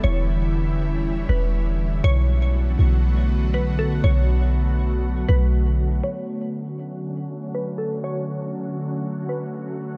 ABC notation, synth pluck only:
X:1
M:4/4
L:1/8
Q:1/4=120
K:D
V:1 name="Synth pluck"
c4- c B3 | c2 z4 B A | c4- c B z2 | c2 z4 B A |
c4- c B3 |]